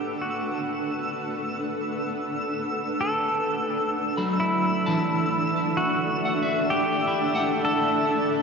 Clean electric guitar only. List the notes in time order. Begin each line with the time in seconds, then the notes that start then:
4.17 F#3 B5
4.86 E3 A5
6.25 F#5
6.43 E5
7.07 E4
7.35 F#5